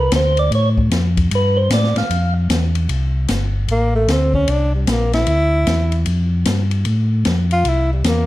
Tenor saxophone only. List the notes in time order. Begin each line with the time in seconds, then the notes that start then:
3.71 A#3
3.95 A3
4.11 C4
4.35 C#4
4.50 D4
4.75 G3
4.91 A#3
5.14 E4
7.52 F4
7.68 E4
7.92 G3
8.07 A#3